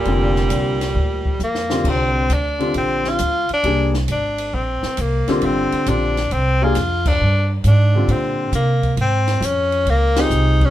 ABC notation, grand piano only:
X:1
M:4/4
L:1/8
Q:"Swing" 1/4=135
K:Cdor
V:1 name="Grand piano"
[D,G,CF]3 z4 [D,G,CF]- | [K:Ebmix] [=D,G,CF]2 z [D,G,CF]3 z2 | [G,B,=DA] z6 [=D,G,CF]- | [=D,G,CF]2 [D,G,CF] z2 [G,B,=DA] z2 |
z3 [=D,G,CF]3 z2 | z4 z [CFGA]3 |]